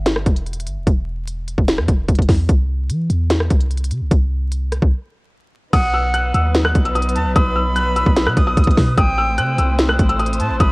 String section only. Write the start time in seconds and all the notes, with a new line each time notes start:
5.73 F#3 B3 D#4 B4
8.98 A3 C4 E4 C5